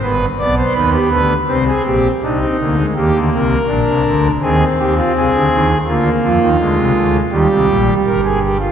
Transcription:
<<
  \new Staff \with { instrumentName = "Pipe organ" } { \time 4/4 \key c \phrygian \tempo 4 = 83 b'8 d''16 c''16 b'16 g'16 b'8 c''16 aes'16 g'8 ees'4 | \key ees \major g'8 bes'4. aes'8 g'16 f'16 aes'4 | f'8 f'4. g'4 bes'16 aes'16 g'16 f'16 | }
  \new Staff \with { instrumentName = "Pipe organ" } { \clef bass \time 4/4 \key c \phrygian << { b8 b4. c'4 d'16 c'16 bes16 aes16 | \key ees \major bes4 d'4 c'2 | bes4 aes4 g2 | } \\ { <g,, g,>8 <b,, b,>8 <ees, ees>8 <d, d>8 <c, c>8 <bes,, bes,>8 <c, c>8 <d, d>8 | <ees, ees>16 <d, d>16 <c, c>8 <bes,, bes,>16 <c, c>16 <d, d>8 <ees, ees>8 <ees, ees>8 <c, c>16 <d, d>16 <ees, ees>8 | <d, d>8 <f, f>16 <ees, ees>16 <d, d>16 <c, c>16 <d, d>8 <ees, ees>16 <c, c>16 <bes,, bes,>8 <g,, g,>4 | } >> }
>>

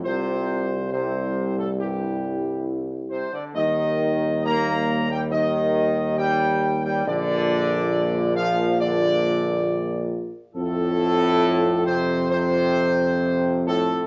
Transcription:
<<
  \new Staff \with { instrumentName = "Trumpet section" } { \time 4/4 \key bes \major \tempo 4 = 69 c''4 c''8. a'16 g'4 r8 c''16 d''16 | ees''4 bes''8. g''16 ees''4 g''8. g''16 | d''4. f''8 d''4. r8 | a'4. c''8 c''4. a'8 | }
  \new Staff \with { instrumentName = "French horn section" } { \time 4/4 \key bes \major << { f'4 e'2. | ees'1 | f'1 | f'1 | } \\ { g1 | g1 | bes1 | c'1 | } >> }
  \new Staff \with { instrumentName = "Trombone section" } { \clef bass \time 4/4 \key bes \major c4 c8. a,16 g,4 r8 c16 d16 | ees4 bes8. g16 ees4 g8. g16 | d4. f8 d4. r8 | a,4. c8 c4. a,8 | }
  \new Staff \with { instrumentName = "Tuba" } { \clef bass \time 4/4 \key bes \major c,2.~ c,8 r8 | ees,1 | bes,,2.~ bes,,8 r8 | f,1 | }
>>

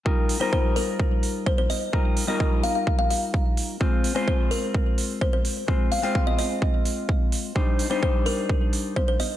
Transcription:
<<
  \new Staff \with { instrumentName = "Kalimba" } { \time 4/4 \key ees \major \tempo 4 = 128 r8. c''16 c''16 r16 bes'16 r4 r16 c''16 c''16 ees''16 r16 | r8. ees''16 r8 f''16 f''16 r16 f''16 f''16 r4 r16 | r8. c''16 c''16 r16 bes'16 r4 r16 c''16 c''16 r8 | r8 f''16 g''16 r16 ees''16 ees''8. r4. r16 |
r8. c''16 c''16 r16 bes'16 r4 r16 c''16 c''16 ees''16 r16 | }
  \new Staff \with { instrumentName = "Clean electric guitar" } { \time 4/4 \key ees \major <g ees' f' bes'>8. <g ees' f' bes'>2.~ <g ees' f' bes'>16 | <g ees' f' bes'>8. <g ees' f' bes'>2.~ <g ees' f' bes'>16 | <aes c' f' c''>8. <aes c' f' c''>2.~ <aes c' f' c''>16 | <aes c' f' c''>8. <aes c' f' c''>2.~ <aes c' f' c''>16 |
<g d' ees' c''>8. <g d' ees' c''>2.~ <g d' ees' c''>16 | }
  \new DrumStaff \with { instrumentName = "Drums" } \drummode { \time 4/4 bd8 hho8 bd8 hho8 bd8 hho8 bd8 hho8 | bd8 hho8 bd8 hho8 bd8 hho8 bd8 hho8 | bd8 hho8 bd8 hho8 bd8 hho8 bd8 hho8 | bd8 hho8 bd8 hho8 bd8 hho8 bd8 hho8 |
bd8 hho8 bd8 hho8 bd8 hho8 bd8 hho8 | }
>>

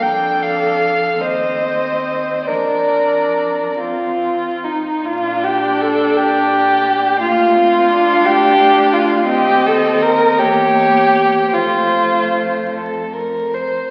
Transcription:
<<
  \new Staff \with { instrumentName = "Violin" } { \time 6/8 \key bes \major \tempo 4. = 51 g''8 f''4 ees''4. | d''4. r4. | r8 d''4. d''4 | f''8 f''4. f''4 |
ees''4. cis''4. | c''4. a'8 bes'8 c''8 | }
  \new Staff \with { instrumentName = "Violin" } { \time 6/8 \key bes \major a'4. c''4. | bes'4. f'4 ees'8 | f'8 g'8 a'8 g'4. | f'4. g'4 f'8 |
g'8 a'8 bes'8 g'4. | f'4. r4. | }
  \new Staff \with { instrumentName = "Viola" } { \time 6/8 \key bes \major d'4. c'4. | d'4. c'4 r8 | d'2. | bes8 c'8 d'2 |
c'4. bes4. | a2~ a16 r8. | }
  \new Staff \with { instrumentName = "Cello" } { \clef bass \time 6/8 \key bes \major f,4. ees,4. | f,2~ f,8 r8 | bes,4. bes,4. | d,4. d,4. |
ees,4. e,4. | f,2~ f,8 r8 | }
>>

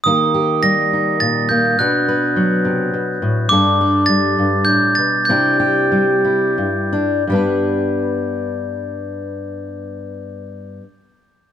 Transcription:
<<
  \new Staff \with { instrumentName = "Glockenspiel" } { \time 6/8 \key g \major \tempo 4. = 65 ees'''4 bes'''4 a'''8 g'''8 | fis'''4 r2 | d'''4 a'''4 g'''8 a'''8 | g'''4 r2 |
r2. | r2. | }
  \new Staff \with { instrumentName = "Steel-string acoustic guitar" } { \time 6/8 \key g \major << { <bes ees' g'>8 g'4 ees'4 bes8 | <d' fis' b'>8 b'2~ b'8 | <d' a'>8 a'2~ a'8 | <d' e' g'>8 g'4 e'4 d'8 |
<g b d' b'>2.~ | <g b d' b'>2. | } \\ { ees4 g4 bes,4 | b,4 fis8 c8 b,8 a,8 | g,4 g8 g,8 a,8 b,8 | c4 g4 g,4 |
g,2.~ | g,2. | } >> }
>>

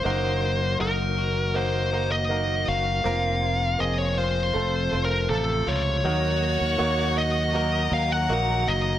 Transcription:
<<
  \new Staff \with { instrumentName = "Violin section" } { \time 4/4 \key ees \dorian \tempo 4 = 80 r1 | r1 | <ges' ges''>2 <bes' bes''>2 | }
  \new Staff \with { instrumentName = "Lead electric guitar" } { \time 4/4 \key ees \dorian c''4 bes'4 c''8. ees''8. f''8~ | f''4 ees''16 des''16 c''8~ \tuplet 3/2 { c''4 bes'8 } a'8 des''8~ | des''4. ees''4 f''16 ges''8. ees''8 | }
  \new Staff \with { instrumentName = "Grand piano" } { \time 4/4 \key ees \dorian <bes ees' ges' bes'>4 <bes ees' ges' bes'>4 <bes ees' ges' bes'>8 <bes ees' ges' bes'>8 <bes ees' ges' bes'>4 | <bes c' f' bes'>4 <bes c' f' aes'>4 <a c' f' a'>8 <a c' f' c''>8 <c a f' a'>4 | <ges bes ees' ges' bes'>4 <ges bes ees' ges' des''>4 <ges bes ees' ges' bes'>4 <ges bes ees' ges' bes'>4 | }
  \new Staff \with { instrumentName = "Grand piano" } { \clef bass \time 4/4 \key ees \dorian r1 | r1 | ees4. r2 r8 | }
  \new Staff \with { instrumentName = "Clean electric guitar" } { \time 4/4 \key ees \dorian ges8 bes8 ees'8 ges'8 bes8 ees'8 bes8 ges'8 | f,8 bes8 c'8 f'8 f,8 c'8 a8 f'8 | <ees ges'>8 bes8 ges'8 ees'8 ges'8 ees'8 ges'8 bes8 | }
  \new Staff \with { instrumentName = "Tonewheel organ" } { \clef bass \time 4/4 \key ees \dorian << { <ees ges ges'>1 | <c f f'>1 | <ees ges ges'>1 | } \\ { bes1~ | bes2 a2 | bes1 | } >> }
  \new Staff \with { instrumentName = "Fingered electric bass" } { \clef bass \time 4/4 \key ees \dorian ges,,4 ges,,2~ ges,,8 ges,,8 | f,,4 f,,4 f,,8 f,,8 a,,8 des,8 | ees,8. ees,16 ees,4. ees,8 bes,,8 ges,,8 | }
>>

